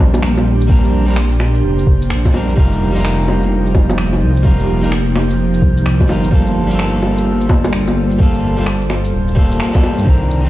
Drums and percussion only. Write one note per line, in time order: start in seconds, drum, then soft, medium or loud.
0.14 low bongo medium
0.14 shaker medium
0.23 finger snap loud
0.37 low bongo medium
0.37 shaker soft
0.61 shaker medium
0.70 kick loud
0.84 shaker soft
1.08 shaker medium
1.16 finger snap loud
1.31 shaker soft
1.40 finger snap medium
1.40 low bongo medium
1.55 shaker medium
1.79 shaker soft
1.87 kick loud
2.02 shaker medium
2.10 finger snap loud
2.25 kick loud
2.25 low bongo soft
2.25 shaker soft
2.34 low bongo soft
2.49 shaker medium
2.57 kick loud
2.73 shaker soft
2.96 shaker medium
3.05 finger snap loud
3.28 low bongo medium
3.43 shaker medium
3.66 shaker soft
3.75 kick loud
3.75 low bongo medium
3.90 low bongo medium
3.90 shaker medium
3.98 finger snap loud
4.13 low bongo medium
4.13 shaker soft
4.36 shaker medium
4.45 kick loud
4.60 shaker soft
4.83 shaker medium
4.92 finger snap loud
5.16 finger snap medium
5.16 low bongo medium
5.30 shaker medium
5.54 shaker soft
5.62 kick loud
5.77 shaker medium
5.86 finger snap loud
6.00 kick loud
6.00 low bongo medium
6.00 shaker soft
6.09 low bongo medium
6.24 shaker medium
6.32 kick loud
6.47 shaker soft
6.71 shaker medium
6.79 finger snap loud
7.03 low bongo medium
7.18 shaker medium
7.41 shaker soft
7.49 kick loud
7.49 low bongo medium
7.64 low bongo medium
7.64 shaker medium
7.73 finger snap loud
7.88 low bongo medium
7.88 shaker soft
8.11 shaker medium
8.20 kick loud
8.34 shaker soft
8.58 shaker medium
8.66 finger snap loud
8.81 shaker soft
8.90 finger snap medium
8.90 low bongo medium
9.05 shaker medium
9.28 shaker soft
9.37 kick loud
9.51 shaker medium
9.60 finger snap loud
9.75 kick loud
9.75 low bongo medium
9.75 shaker soft
9.83 low bongo medium
9.98 shaker medium
10.07 kick loud
10.30 shaker medium
10.45 shaker soft